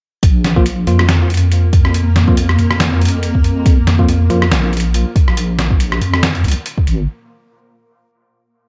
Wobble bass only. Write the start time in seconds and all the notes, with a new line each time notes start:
0.23 A#1
0.87 F2
2.59 F2
4.30 F2
4.52 A#1
5.28 A#1
6.01 F2
6.44 C#2
6.87 G#1